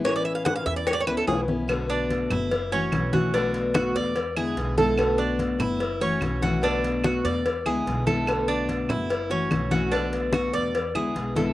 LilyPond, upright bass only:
\new Staff \with { instrumentName = "Upright bass" } { \clef bass \time 4/4 \key b \dorian \tempo 4 = 146 a,,4. e,4 cis,8 b,,4~ | b,,4. fis,,4. b,,4~ | b,,4. e,4. b,,4~ | b,,4. fis,,4. b,,4~ |
b,,4. e,4 cis,8 b,,4~ | b,,4. fis,,4. b,,4~ | b,,4. e,4 cis,8 b,,4 | }